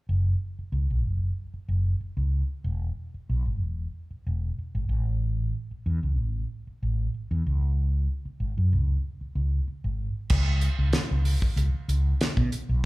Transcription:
0.09 fretless electric bass F#1
0.59 muted fretless electric bass stroke
0.72 fretless electric bass C#2
0.90 fretless electric bass B1
1.05 fretless electric bass F#1
1.54 muted fretless electric bass stroke
1.68 fretless electric bass F#1
2.01 muted fretless electric bass stroke
2.17 fretless electric bass C#2
2.64 fretless electric bass E1
3.14 muted fretless electric bass stroke
3.29 fretless electric bass B1
3.46 fretless electric bass G#1
3.61 fretless electric bass E1
4.11 muted fretless electric bass stroke
4.27 fretless electric bass E1
4.58 muted fretless electric bass stroke
4.75 fretless electric bass G#1
4.89 fretless electric bass A1
5.71 muted fretless electric bass stroke
5.86 fretless electric bass E2
6.03 fretless electric bass C#2
6.18 fretless electric bass A1
6.67 muted fretless electric bass stroke
6.83 fretless electric bass A1
7.14 muted fretless electric bass stroke
7.31 fretless electric bass E2
7.46 fretless electric bass C#2
8.25 muted fretless electric bass stroke
8.40 fretless electric bass G#1
8.58 fretless electric bass F#2
8.73 fretless electric bass C#2
9.21 muted fretless electric bass stroke
9.35 fretless electric bass C#2
9.68 muted fretless electric bass stroke
9.84 fretless electric bass G#1
10.30 fretless electric bass C#2, kick, crash
10.61 closed hi-hat
10.79 fretless electric bass C#2
10.93 snare, closed hi-hat
11.11 fretless electric bass C#2
11.25 open hi-hat
11.42 kick
11.56 fretless electric bass C#2, closed hi-hat
11.74 muted fretless electric bass stroke
11.88 fretless electric bass C#2, closed hi-hat
12.21 snare, closed hi-hat
12.37 fretless electric bass B2, kick
12.52 muted fretless electric bass stroke, closed hi-hat
12.69 fretless electric bass B1

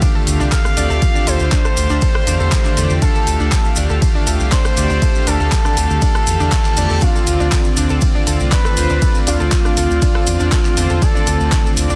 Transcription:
Already playing: supersaw synth D3 A3 G4 F5, ambient pad D3 C4 F4 G4 A4
0.02 synth pluck D4, kick, ride, maracas
0.15 synth pluck A4
0.27 analog synth bass D2, open hi-hat, maracas
0.40 analog synth bass C2, synth pluck D4, maracas
0.52 synth pluck A4, analog synth lead F5, synth bell F6, kick, clap, ride, maracas
0.65 cross-stick, maracas
0.77 analog synth bass D2, supersaw synth D3 A3 G4 D5, synth pluck D4, open hi-hat, maracas
0.90 analog synth bass D2, synth pluck A4, maracas
1.02 supersaw synth D3 A3 G4 F5, kick, ride, maracas
1.15 synth pluck D4, maracas
1.27 analog synth bass D2, synth pluck A4, analog synth lead C5, synth bell C6, open hi-hat, maracas
1.39 analog synth bass D2, maracas
1.52 synth pluck D4, kick, clap, ride, maracas
1.65 synth pluck A4, cross-stick, maracas
1.77 analog synth bass D2, open hi-hat, maracas
1.90 analog synth bass D2, synth pluck D4, maracas
2.01 synth pluck A4, kick, ride, maracas
2.15 cross-stick
2.27 analog synth bass E2, synth pluck D4, open hi-hat, maracas
2.40 analog synth bass E2, synth pluck A4, maracas
2.51 kick, clap, ride, maracas
2.65 synth pluck D4, clap, maracas
2.77 analog synth bass E2, supersaw synth D3 A3 G4 D5, synth pluck A4, open hi-hat, maracas
2.90 analog synth bass E2, maracas
3.02 supersaw synth A3 G4 F5, synth pluck D4, analog synth lead A4, synth bell A5, kick, ride, maracas
3.15 synth pluck A4, maracas
3.27 analog synth bass D2, open hi-hat, maracas
3.40 analog synth bass D2, synth pluck D4, maracas
3.52 synth pluck A4, kick, clap, ride, maracas
3.65 maracas
3.76 analog synth bass D2, synth pluck D4, open hi-hat, maracas
3.89 analog synth bass D2, synth pluck A4, maracas
4.02 kick, ride, maracas
4.15 synth pluck D4
4.27 analog synth bass D2, synth pluck A4, open hi-hat, maracas
4.40 analog synth bass C2, maracas
4.52 synth pluck D4, analog synth lead C5, synth bell C6, kick, clap, ride, maracas
4.65 synth pluck A4, cross-stick, maracas
4.77 analog synth bass D2, supersaw synth D3 A3 G4 D5, open hi-hat, maracas
4.90 analog synth bass D2, synth pluck D4, maracas
5.02 supersaw synth D3 A3 F5, synth pluck A4, kick, ride, maracas
5.15 maracas
5.27 analog synth bass D2, synth pluck D4, analog synth lead A4, synth bell A5, open hi-hat, maracas
5.40 analog synth bass D2, synth pluck A4, maracas
5.52 kick, clap, ride, maracas
5.65 synth pluck D4, cross-stick, maracas
5.77 analog synth bass D2, synth pluck A4, open hi-hat, maracas
5.90 analog synth bass D2, maracas
6.02 synth pluck D4, kick, ride, reverse cymbal, maracas
6.15 synth pluck A4, cross-stick, maracas
6.27 analog synth bass E2, open hi-hat, maracas
6.40 analog synth bass E2, synth pluck D4, maracas
6.52 synth pluck A4, kick, clap, ride, maracas
6.65 clap, maracas
6.77 analog synth bass E2, supersaw synth D3 A3 G4 D5, synth pluck D4, open hi-hat, maracas
6.90 analog synth bass E2, synth pluck A4, maracas
7.02 supersaw synth D3 C4 F4 D5, ambient pad D3 A3 C4 F4, synth pluck D4, analog synth lead F4, synth bell F5, kick, ride, maracas
7.15 synth pluck A4, maracas
7.27 analog synth bass D2, open hi-hat, maracas
7.40 analog synth bass D2, synth pluck D4, maracas
7.52 synth pluck A4, kick, clap, ride, maracas
7.65 maracas
7.77 analog synth bass D2, synth pluck D4, open hi-hat, maracas
7.89 analog synth bass D2, synth pluck A4, maracas
8.01 kick, ride, maracas
8.15 synth pluck D4
8.27 analog synth bass D2, synth pluck A4, open hi-hat, maracas
8.40 analog synth bass C2, maracas
8.52 synth pluck D4, analog synth lead B4, synth bell B5, kick, clap, ride, maracas
8.65 synth pluck A4, cross-stick, maracas
8.77 analog synth bass D2, supersaw synth D3 C4 F4 C5, open hi-hat, maracas
8.89 analog synth bass D2, synth pluck D4, maracas
9.02 supersaw synth D3 C4 F4 D5, synth pluck A4, kick, ride, maracas
9.15 maracas
9.27 analog synth bass D2, synth pluck D4, analog synth lead F4, synth bell F5, open hi-hat, maracas
9.40 analog synth bass D2, synth pluck A4, maracas
9.52 kick, clap, ride, maracas
9.65 synth pluck D4, cross-stick, maracas
9.77 analog synth bass D2, synth pluck A4, open hi-hat, maracas
9.90 analog synth bass D2, maracas
10.02 synth pluck D4, kick, ride, maracas
10.15 synth pluck A4, cross-stick
10.27 analog synth bass E2, open hi-hat, maracas
10.40 analog synth bass E2, synth pluck D4, maracas
10.52 synth pluck A4, kick, clap, ride, maracas
10.65 clap, maracas
10.77 analog synth bass E2, supersaw synth D3 C4 F4 C5, synth pluck D4, open hi-hat, maracas
10.90 analog synth bass E2, synth pluck A4, maracas
11.02 supersaw synth D3 C4 F4 D5, ambient pad D4, analog synth lead A4, synth bell A5, kick, ride, maracas
11.15 synth pluck D4, maracas
11.27 analog synth bass D2, synth pluck A4, open hi-hat, maracas
11.40 analog synth bass D2, maracas
11.52 synth pluck D4, kick, clap, ride, maracas
11.65 synth pluck A4, maracas
11.77 analog synth bass D2, open hi-hat, maracas
11.90 analog synth bass D2, synth pluck D4, maracas

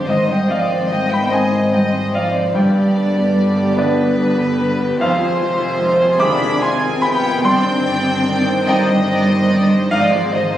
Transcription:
0.06 double bass section G#1, grand piano G#2 D#5, cello section D#3, french horn section D#3 C4, viola section C4 D#4, violin section C5 D#5
0.26 cello section G3, viola section C4 D#4, violin section C5 D#5
0.32 grand piano G5
0.48 cello section F3, viola section C4 D#4, violin section D5 D#5, grand piano F5
0.70 viola section C4 D#4, violin section C5
0.88 cello section G3, violin section D#5
0.92 viola section C4 D#4, grand piano G5
1.10 cello section B3, viola section C4 D#4, violin section C5 G5, grand piano B5
1.30 cello section G#3, grand piano C4 C5 G#5, viola section C4 D#4, violin section D#5
1.50 viola section C4 D#4, violin section C5
1.71 cello section G3, viola section C4 D#4, violin section D#5, grand piano G5
1.91 viola section C4 D#4, violin section C5
2.12 cello section F3, viola section C4 D#4, violin section D5 D#5, grand piano F5
2.34 viola section C4 D#4, violin section C5
2.53 double bass section G1, grand piano G2 G5, french horn section D3 B3, viola section G3 D4, cello section G3, violin section B4 D5
2.75 viola section B3, violin section G4
2.95 viola section G3 D4, violin section B4
3.16 viola section B3, violin section G4
3.37 viola section G3 D4, violin section B4
3.56 viola section B3, violin section G4
3.77 cello section D3, viola section G3 D4, grand piano B3 D4 G4 D5, violin section B4
3.97 viola section B3, violin section G4
4.18 viola section G3 D4, violin section B4
4.38 viola section B3, violin section G4
4.58 viola section G3 D4, violin section B4
4.78 viola section B3, violin section G4
4.98 double bass section F1, grand piano F2 F5, french horn section C3 D#3, cello section F3, viola section G#3 D#4, violin section F4 C5
5.19 viola section C4 F4, violin section G#4
5.40 viola section G#3 D#4, violin section F4
5.60 viola section C4 F4, violin section G#4
5.80 viola section G#3 D#4, violin section F4
6.02 viola section C4 F4, violin section G#4
6.20 grand piano C3 D#3 G#4 D6, viola section G#3 D#4, cello section D4, violin section F4 B5
6.41 viola section C4 F4, violin section G#4
6.61 viola section G#3 D#4, cello section C4, violin section F4 G#5, grand piano C6
6.82 viola section C4 F4, violin section G#4
7.02 viola section G#3 D#4, cello section B3, violin section F4 G5, grand piano B5
7.24 viola section C4 F4, violin section G#4
7.44 double bass section G1, grand piano G2 C6, cello section C4, viola section D4 D#4, french horn section D#4, violin section D5 G5
7.65 viola section C4 D4, violin section C5
7.87 viola section D4 D#4, violin section D5
8.07 viola section C4 D4, violin section C5
8.27 viola section D4 D#4, violin section D5
8.48 viola section C4 D4, violin section C5
8.67 cello section G3, grand piano C4 D#4 C5 G5, viola section D4 D#4, violin section D5 D#5
8.87 viola section C4 D4, violin section C5
9.08 viola section D4 D#4, violin section D5
9.29 viola section C4 D4, violin section C5
9.50 viola section D4 D#4, violin section D5
9.69 viola section C4 D4, violin section C5
9.91 double bass section G#1, grand piano G#2 F5, french horn section D#3 C4, cello section F3, viola section G#3 D#4, violin section D5 D#5
10.11 viola section C4 G#4, violin section C5
10.31 cello section D#3, viola section G#3 D#4, violin section C5 D#5, grand piano D#5
10.53 viola section G#4, violin section C5

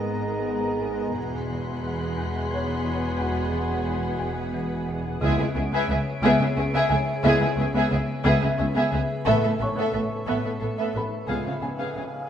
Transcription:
Already playing: double bass section G#1, cello section G#2, trombone section D#3 G#3, french horn section B3 G#4, ambient pad B3 G#4 A#5, viola section B3, felt piano D#4 D#5, violin section A#4 D#5
0.15 marimba G#2
0.49 marimba G#3
0.83 marimba G#2
1.16 double bass section E1, marimba E2, cello section E2, trombone section E3 G#3, ambient pad B3 G#4 F#5, french horn section B3 F#4, viola section B3, violin section G#4 F#5 B5 C6 F#6
1.50 marimba E3
1.84 marimba E2
2.17 marimba E2
2.51 marimba E3, felt piano C#5
2.85 marimba E2
3.19 marimba E2, felt piano F#4 F#5
3.52 marimba E3
3.87 marimba E2
4.20 marimba E2
4.54 marimba E3
4.88 marimba E2
5.20 double bass section C#2, cello section C#2, marimba C#3, trombone section E3 G#3, viola section B3, french horn section B3 E4, violin section G#4 C#5 E5 D7, ambient pad G#4 B4 E5
5.38 cello section C#2, viola section B3, violin section G#4 E5
5.55 double bass section C#2, cello section C#2, viola section B3, marimba C#4, violin section G#4 E5
5.72 cello section C#2, viola section B3, violin section G#4 E5
5.88 double bass section C#2, cello section C#2, marimba C#3, viola section B3, violin section G#4 E5
6.22 double bass section C#2, cello section C#2, marimba C#3, viola section B3, violin section G#4 E5
6.40 cello section C#2, viola section B3, violin section G#4 E5
6.56 double bass section C#2, cello section C#2, viola section B3, marimba C#4, violin section G#4 E5
6.73 cello section C#2, viola section B3, violin section G#4 E5
6.89 cello section C#2, double bass section C#2, marimba C#3, viola section B3, violin section G#4 E5, felt piano G#5
7.23 double bass section C#2, cello section C#2, marimba C#3, trombone section E3 G#3, viola section B3, french horn section B3 E4, violin section G#4 E5
7.40 cello section C#2, viola section B3, violin section E5
7.44 violin section G#4
7.57 double bass section C#2, cello section C#2, viola section B3, marimba C#4, violin section G#4 E5
7.73 cello section C#2, viola section B3, violin section G#4 E5
7.90 double bass section C#2, cello section C#2, marimba C#3, viola section B3, violin section G#4 E5
8.24 double bass section C#2, cello section C#2, marimba C#3, viola section B3, violin section G#4 E5
8.42 cello section C#2, viola section B3, violin section G#4 E5
8.58 double bass section C#2, cello section C#2, viola section B3, marimba C#4, violin section G#4 E5
8.75 cello section C#2, viola section B3, violin section G#4 E5
8.91 double bass section C#2, cello section C#2, marimba C#3, viola section B3, violin section G#4 E5
9.25 double bass section A1, marimba A2, cello section A2, trombone section E3 A3, french horn section B3 E4, viola section B3, violin section A4 E5, ambient pad A4
9.43 cello section A2, viola section B3, violin section A4 E5
9.59 double bass section A1, cello section A2, marimba A3, viola section B3, violin section A4 E5, felt piano C#6
9.63 felt piano C#5
9.76 cello section A2, viola section B3, violin section A4 E5
9.93 double bass section A1, marimba A2, cello section A2, viola section B3, violin section A4 E5
10.26 double bass section A1, marimba A2, cello section A2, viola section B3, violin section A4 E5
10.44 cello section A2, viola section B3, violin section A4 E5
10.60 double bass section A1, cello section A2, marimba A3, viola section B3, violin section A4 E5
10.77 cello section A2, viola section B3, violin section A4 E5
10.93 double bass section A1, marimba A2, cello section A2, viola section B3, violin section A4 E5, felt piano B4 B5
11.28 double bass section C#2, marimba C#3, cello section C#3, trombone section C#3 G#3, viola section B3, french horn section B3 F4, violin section G#4 F5, ambient pad G#4 B4 F5
11.45 cello section C#3, viola section B3, violin section G#4 F5
11.61 double bass section C#2, cello section C#3, viola section B3, marimba C#4, violin section G#4 F5, felt piano G#5
11.78 cello section C#3, viola section B3, violin section G#4 F5
11.96 double bass section C#2, marimba C#3, cello section C#3, viola section B3, violin section G#4 F5

